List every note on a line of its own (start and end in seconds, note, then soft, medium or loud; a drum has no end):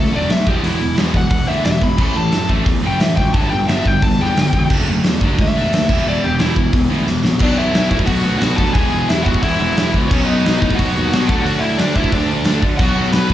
0.00 0.11 D3 medium
0.00 0.26 D3 medium
0.00 0.12 F#3 medium
0.00 0.11 A3 medium
0.00 0.12 A3 medium
0.00 0.28 A3 medium
0.00 0.29 D4 medium
0.00 0.12 A4 medium
0.13 0.26 E1 loud
0.13 0.29 D3 medium
0.13 0.29 F#3 medium
0.13 0.29 A3 loud
0.13 0.29 D4 loud
0.13 0.30 D4 loud
0.13 0.31 D5 medium
0.28 0.43 B1 medium
0.28 0.45 D3 medium
0.28 0.46 F#3 medium
0.28 0.46 A3 medium
0.28 0.46 D4 medium
0.28 0.47 E5 medium
0.28 snare loud
0.28 open hi-hat medium
0.46 0.60 E1 medium
0.46 0.94 E2 medium
0.46 0.96 B2 medium
0.46 0.62 E3 loud
0.46 0.98 E3 loud
0.46 0.63 G#3 loud
0.46 0.64 B3 loud
0.46 0.65 G4 medium
0.46 kick medium
0.63 0.76 E1 loud
0.63 0.80 E2 medium
0.63 0.80 B2 loud
0.63 0.79 E3 medium
0.63 0.80 E3 loud
0.63 0.79 G#3 medium
0.63 0.80 B3 loud
0.63 0.97 E4 loud
0.63 open hi-hat medium
0.80 0.94 E1 medium
0.80 0.96 E2 medium
0.80 0.96 B2 medium
0.80 0.96 E3 medium
0.80 0.96 G#3 medium
0.96 1.11 E1 loud
0.96 1.47 E2 medium
0.96 1.47 B2 medium
0.96 1.46 E3 medium
0.96 1.14 E3 medium
0.96 1.14 G#3 medium
0.96 1.15 B3 medium
0.96 snare loud
0.96 open hi-hat medium
1.14 1.28 E1 medium
1.14 1.29 E2 medium
1.14 1.29 B2 medium
1.14 1.30 E3 medium
1.14 1.30 G#3 medium
1.14 1.48 F#5 medium
1.14 kick medium
1.30 1.44 E1 loud
1.30 1.46 E2 medium
1.30 1.46 B2 medium
1.30 1.47 E3 medium
1.30 1.47 G#3 medium
1.30 kick loud
1.30 open hi-hat medium
1.47 1.62 D2 loud
1.47 1.82 E2 medium
1.47 1.82 B2 medium
1.47 1.81 E3 medium
1.47 1.64 E3 loud
1.47 1.64 G#3 medium
1.47 1.65 B3 loud
1.47 1.64 E5 loud
1.65 1.78 E1 medium
1.65 1.80 E2 medium
1.65 1.81 B2 loud
1.65 1.80 E3 medium
1.65 1.81 G#3 medium
1.65 1.82 E5 medium
1.65 snare loud
1.65 open hi-hat medium
1.81 1.95 E1 medium
1.81 1.97 E2 medium
1.81 1.97 B2 medium
1.81 1.97 E3 medium
1.81 1.98 G#3 medium
1.81 1.99 B5 medium
1.81 kick medium
1.97 2.12 A1 medium
1.97 2.14 A2 medium
1.97 2.49 A2 medium
1.97 2.15 E3 loud
1.97 2.49 E3 loud
1.97 2.15 A3 loud
1.97 2.47 A3 loud
1.97 2.17 B5 medium
1.97 kick loud
1.97 crash loud
2.15 2.29 A1 medium
2.15 2.31 A2 medium
2.15 2.31 E3 medium
2.15 2.50 A5 medium
2.32 2.47 F#2 medium
2.32 2.48 A2 medium
2.32 2.48 E3 medium
2.32 2.48 E3 loud
2.32 snare loud
2.32 open hi-hat medium
2.48 2.63 A1 medium
2.48 2.66 A2 medium
2.48 2.98 A2 medium
2.48 3.00 E3 medium
2.48 2.66 E3 medium
2.48 2.99 A3 medium
2.48 2.67 A3 loud
2.48 kick medium
2.66 2.79 E2 medium
2.66 2.82 A2 medium
2.66 2.83 A2 medium
2.66 2.82 E3 loud
2.66 2.83 E3 medium
2.66 kick loud
2.66 open hi-hat medium
2.83 2.96 F#1 medium
2.83 3.00 A2 medium
2.83 3.00 E3 loud
2.83 3.00 E3 medium
2.83 3.00 A3 loud
2.83 3.01 A3 loud
2.87 3.00 G5 loud
2.99 3.13 D2 loud
2.99 3.33 A2 medium
2.99 3.17 A2 medium
2.99 3.34 E3 medium
2.99 3.17 E3 medium
2.99 3.35 A3 medium
2.99 3.16 E5 medium
2.99 snare loud
2.99 open hi-hat medium
3.16 3.31 C#2 medium
3.16 3.33 A2 medium
3.16 3.34 A2 medium
3.16 3.33 E3 medium
3.16 3.34 E3 medium
3.16 3.33 G5 loud
3.16 kick medium
3.33 3.47 G1 loud
3.33 3.84 G2 medium
3.33 3.85 D3 loud
3.33 3.51 G3 loud
3.33 3.51 B3 loud
3.33 3.52 D4 loud
3.33 3.50 A5 medium
3.33 kick loud
3.33 open hi-hat medium
3.37 3.85 G3 loud
3.50 3.65 G1 medium
3.50 3.67 G2 medium
3.50 3.67 D3 medium
3.50 3.68 G3 medium
3.50 3.68 B3 medium
3.50 3.67 G5 medium
3.68 3.81 G1 medium
3.68 3.84 G2 loud
3.68 3.85 D3 loud
3.68 3.85 G3 loud
3.68 3.85 G3 medium
3.68 3.86 B3 loud
3.68 3.86 D4 loud
3.68 3.87 E5 medium
3.68 snare loud
3.68 open hi-hat medium
3.85 3.98 G1 medium
3.85 4.34 G2 medium
3.85 4.36 D3 medium
3.85 4.36 G3 medium
3.85 4.02 G3 medium
3.85 4.02 B3 medium
3.85 4.03 G5 medium
3.85 kick medium
4.02 4.16 G1 loud
4.02 4.19 G2 medium
4.02 4.19 D3 medium
4.02 4.19 G3 medium
4.02 4.19 B3 medium
4.02 4.19 A5 loud
4.02 kick loud
4.02 open hi-hat medium
4.19 4.32 E2 loud
4.19 4.36 G2 loud
4.19 4.36 D3 medium
4.19 4.37 G3 medium
4.19 4.37 G3 loud
4.19 4.37 B3 medium
4.19 4.70 G5 loud
4.23 4.37 D4 loud
4.35 4.50 G1 medium
4.35 4.69 G2 medium
4.35 4.69 D3 medium
4.35 4.71 G3 medium
4.35 snare loud
4.35 open hi-hat medium
4.39 4.53 G3 medium
4.39 4.54 B3 medium
4.53 4.66 E1 medium
4.53 4.69 G2 medium
4.53 4.69 D3 medium
4.53 4.71 G3 medium
4.53 4.71 B3 medium
4.53 kick medium
4.70 4.84 F#1 medium
4.70 5.20 D3 loud
4.70 4.88 F#3 medium
4.70 5.21 A3 loud
4.70 5.21 D4 loud
4.70 4.88 D4 loud
4.70 kick loud
4.70 crash loud
4.74 4.88 A3 loud
4.88 5.01 F#1 loud
4.88 5.04 D3 medium
4.88 5.04 F#3 medium
4.88 5.04 A3 medium
5.04 5.19 E2 loud
5.04 5.21 D3 medium
5.04 5.21 F#3 medium
5.04 5.21 A3 medium
5.04 snare loud
5.04 open hi-hat medium
5.21 5.34 F#1 loud
5.21 5.37 F#3 loud
5.21 5.38 A3 loud
5.21 5.73 A3 medium
5.21 5.72 D4 loud
5.21 5.38 D4 loud
5.21 kick medium
5.25 5.71 D3 medium
5.38 5.51 C#2 loud
5.38 5.54 D3 medium
5.38 5.54 F#3 medium
5.38 5.54 A3 medium
5.38 5.55 A3 medium
5.38 6.06 E5 loud
5.38 kick loud
5.38 open hi-hat medium
5.56 5.69 E1 medium
5.56 5.72 D3 loud
5.56 5.71 F#3 medium
5.56 5.71 A3 medium
5.56 5.72 A3 medium
5.56 5.73 D4 medium
5.56 5.73 D4 loud
5.72 5.86 D#2 medium
5.72 5.88 D3 medium
5.72 5.88 F#3 medium
5.72 5.88 A3 medium
5.72 5.89 A3 medium
5.72 5.90 D4 medium
5.72 snare loud
5.72 open hi-hat medium
5.89 6.02 E1 medium
5.89 6.38 E2 medium
5.89 6.40 B2 loud
5.89 6.05 E3 loud
5.89 6.40 E3 loud
5.89 6.06 B3 loud
5.89 6.05 E4 loud
5.89 kick loud
5.89 crash loud
6.06 6.20 E1 medium
6.06 6.23 E2 medium
6.06 6.23 B2 loud
6.06 6.21 E3 medium
6.06 6.23 E3 loud
6.06 6.21 B3 loud
6.06 6.23 E4 loud
6.06 6.24 D5 medium
6.22 6.37 E1 medium
6.22 6.39 E2 medium
6.22 6.39 B2 medium
6.22 6.38 E3 medium
6.22 6.38 B3 medium
6.22 6.40 G4 medium
6.39 6.54 E1 loud
6.39 6.90 E2 medium
6.39 6.91 B2 medium
6.39 6.55 E3 loud
6.39 6.56 B3 medium
6.39 6.73 E4 medium
6.39 6.57 E4 loud
6.39 snare loud
6.39 open hi-hat medium
6.43 6.90 E3 medium
6.56 6.70 E1 loud
6.56 6.71 E2 medium
6.56 6.71 B2 medium
6.56 6.72 E3 medium
6.56 6.72 B3 loud
6.56 kick medium
6.72 6.86 E1 medium
6.72 6.88 E2 medium
6.72 6.88 B2 medium
6.72 6.89 E3 medium
6.72 6.89 B3 medium
6.72 kick loud
6.72 open hi-hat medium
6.90 7.04 D2 medium
6.90 7.06 E2 medium
6.90 7.25 B2 medium
6.90 7.06 E3 medium
6.90 7.24 E3 medium
6.90 7.06 B3 loud
6.90 7.07 E4 medium
6.94 7.25 E2 medium
7.07 7.21 E1 loud
7.07 7.23 E2 medium
7.07 7.23 B2 medium
7.07 7.23 E3 medium
7.07 7.23 B3 medium
7.07 snare medium
7.23 7.37 A#1 medium
7.23 7.40 E2 medium
7.23 7.39 B2 medium
7.23 7.40 E3 medium
7.23 7.40 B3 medium
7.23 snare medium
7.39 7.72 B1 loud
7.39 8.58 B2 loud
7.39 7.56 B2 loud
7.39 8.59 F#3 loud
7.39 7.56 F#3 loud
7.39 7.56 B3 loud
7.39 8.59 B3 loud
7.39 7.58 D4 medium
7.39 7.58 D5 medium
7.39 kick loud
7.39 crash loud
7.43 8.57 D4 loud
7.56 7.72 B2 loud
7.56 7.73 F#3 medium
7.56 7.74 B3 loud
7.56 7.90 E4 medium
7.56 7.89 E5 medium
7.73 7.90 B1 loud
7.73 7.90 B2 medium
7.73 7.90 F#3 medium
7.73 7.90 B3 medium
7.73 snare loud
7.73 open hi-hat medium
7.90 8.07 A2 loud
7.90 8.06 B2 loud
7.90 8.06 F#3 loud
7.90 8.08 B3 loud
7.90 7.96 E4 medium
7.90 7.95 E5 loud
7.90 kick medium
7.99 kick medium
8.06 8.24 B1 medium
8.06 8.24 B2 medium
8.06 8.23 F#3 medium
8.06 8.24 B3 medium
8.06 8.38 F#4 medium
8.06 8.37 F#5 medium
8.06 kick loud
8.06 open hi-hat medium
8.24 8.40 D2 loud
8.24 8.39 B2 medium
8.24 8.40 F#3 medium
8.24 8.41 B3 loud
8.38 8.57 B1 loud
8.38 8.56 B2 medium
8.38 8.56 F#3 medium
8.38 8.56 B3 loud
8.38 8.57 F#4 medium
8.38 8.56 F#5 medium
8.38 snare loud
8.38 open hi-hat medium
8.56 8.75 D2 loud
8.56 8.73 B2 medium
8.56 8.74 F#3 medium
8.56 10.13 B3 loud
8.56 8.77 B3 medium
8.56 8.75 D4 medium
8.56 8.74 A4 medium
8.56 8.73 A5 medium
8.56 kick medium
8.61 8.75 B2 medium
8.61 8.76 F#3 medium
8.73 8.91 E1 loud
8.73 8.91 E2 loud
8.73 8.91 B2 loud
8.73 8.90 E3 loud
8.73 9.93 E3 medium
8.73 9.93 G#3 medium
8.73 9.07 G#4 medium
8.73 9.08 G#5 medium
8.73 kick loud
8.73 open hi-hat medium
8.78 9.93 B3 loud
8.78 9.91 E4 loud
8.91 9.08 E1 medium
8.91 9.08 E2 medium
8.91 9.09 B2 medium
8.91 9.09 E3 loud
9.09 9.25 E1 medium
9.09 9.26 E2 medium
9.09 9.25 B2 medium
9.09 9.25 E3 medium
9.09 9.26 E4 medium
9.09 9.23 E5 medium
9.09 snare loud
9.09 open hi-hat medium
9.23 9.42 E1 medium
9.23 9.43 B2 loud
9.23 9.44 E3 loud
9.23 9.41 F#4 medium
9.23 9.42 F#5 medium
9.23 kick medium
9.27 9.42 E2 loud
9.34 kick medium
9.42 9.59 E1 loud
9.42 9.60 E2 loud
9.42 9.58 B2 medium
9.42 9.58 E3 loud
9.42 9.91 E4 medium
9.42 9.90 E5 medium
9.42 kick loud
9.42 open hi-hat medium
9.59 9.76 E1 loud
9.59 9.76 E2 medium
9.59 9.77 B2 medium
9.59 9.77 E3 loud
9.77 9.93 E1 medium
9.77 9.95 E2 medium
9.77 9.94 B2 loud
9.77 9.93 E3 loud
9.77 snare loud
9.77 open hi-hat medium
9.92 10.10 C#2 medium
9.92 10.11 B2 medium
9.92 10.10 E3 loud
9.92 10.09 E3 medium
9.92 10.10 G#3 medium
9.92 10.10 B3 medium
9.92 10.09 E4 medium
9.92 kick medium
9.96 10.11 E2 medium
10.08 10.42 B1 loud
10.08 11.27 B2 loud
10.08 11.31 F#3 loud
10.08 11.28 B3 medium
10.08 10.27 C#4 medium
10.08 10.24 C#5 medium
10.08 kick loud
10.08 crash loud
10.13 10.28 B2 medium
10.13 10.28 F#3 loud
10.13 10.27 B3 loud
10.13 11.29 D#4 loud
10.25 10.45 F#3 medium
10.25 10.45 B3 loud
10.25 10.59 D#4 medium
10.25 10.57 D#5 medium
10.29 10.44 B2 medium
10.45 10.61 B1 loud
10.45 10.61 B2 medium
10.45 10.62 F#3 medium
10.45 10.60 B3 loud
10.45 snare loud
10.45 open hi-hat medium
10.58 10.78 A2 medium
10.58 10.79 F#3 loud
10.58 10.79 B3 loud
10.58 10.77 D#4 medium
10.58 10.77 D#5 loud
10.58 kick loud
10.63 10.78 B2 loud
10.70 kick medium
10.75 11.09 F#4 medium
10.75 11.07 F#5 loud
10.75 kick loud
10.79 10.94 B1 loud
10.79 10.95 B2 medium
10.79 10.96 F#3 loud
10.79 10.94 B3 loud
10.79 open hi-hat medium
10.95 11.11 D#2 loud
10.95 11.11 B2 medium
10.95 11.13 F#3 medium
10.95 11.12 B3 loud
11.09 11.27 B1 medium
11.09 11.28 B2 medium
11.09 11.28 F#4 medium
11.09 11.28 F#5 loud
11.09 open hi-hat medium
11.13 11.30 F#3 medium
11.13 11.29 B3 loud
11.13 snare loud
11.25 11.44 A4 medium
11.25 11.44 A5 loud
11.29 11.45 D2 medium
11.29 11.46 D3 loud
11.29 12.45 D3 medium
11.29 12.47 F#3 loud
11.29 11.46 A3 loud
11.29 12.47 A3 loud
11.29 11.45 D4 loud
11.29 kick loud
11.33 12.48 D4 loud
11.41 11.61 D2 loud
11.41 11.61 F#4 medium
11.41 11.59 F#5 loud
11.46 11.61 D3 loud
11.46 11.62 A3 loud
11.46 11.63 D4 loud
11.46 open hi-hat medium
11.59 11.78 D2 loud
11.59 11.79 D3 medium
11.59 11.79 A3 loud
11.59 11.78 E5 medium
11.63 11.79 D4 loud
11.63 11.79 E4 medium
11.78 11.94 D2 loud
11.78 11.93 D3 medium
11.78 11.94 A3 medium
11.78 11.95 D4 loud
11.78 11.95 D4 medium
11.78 11.96 D5 medium
11.78 snare loud
11.78 open hi-hat medium
11.94 12.12 D2 medium
11.94 12.12 D3 loud
11.94 12.10 A3 loud
11.94 12.10 D4 loud
11.94 12.13 E5 medium
11.94 kick medium
11.99 12.13 E4 medium
12.04 kick medium
12.11 12.28 D2 loud
12.11 12.28 D3 medium
12.11 12.28 A3 medium
12.11 12.29 D4 loud
12.11 12.61 D4 medium
12.11 12.63 D5 loud
12.11 kick loud
12.11 open hi-hat medium
12.29 12.45 D2 loud
12.29 12.45 D3 loud
12.29 12.44 A3 loud
12.29 12.44 D4 loud
12.45 12.62 D2 medium
12.45 12.60 D3 medium
12.45 12.62 D3 medium
12.45 12.63 F#3 medium
12.45 12.61 A3 medium
12.45 12.62 D4 loud
12.45 snare loud
12.45 open hi-hat medium
12.50 12.64 A3 medium
12.50 12.64 D4 medium
12.62 12.78 D3 medium
12.62 12.79 D3 medium
12.62 12.79 A3 loud
12.62 12.79 D4 loud
12.62 kick medium
12.77 13.11 B1 loud
12.77 12.96 B2 loud
12.77 13.34 B2 medium
12.77 12.95 F#3 loud
12.77 12.95 B3 loud
12.77 13.12 F#4 medium
12.77 13.10 F#5 loud
12.77 kick loud
12.77 crash loud
12.82 13.34 F#3 loud
12.82 13.34 B3 loud
12.82 13.34 D4 loud
12.96 13.11 B2 medium
12.96 13.11 F#3 loud
12.96 13.13 B3 medium
13.12 13.29 B1 medium
13.12 13.30 B2 medium
13.12 13.30 F#3 medium
13.12 13.31 B3 medium
13.12 13.27 B5 loud
13.12 snare loud
13.12 open hi-hat medium
13.16 13.31 B4 medium
13.28 13.34 A2 medium
13.28 13.34 B5 loud
13.28 kick medium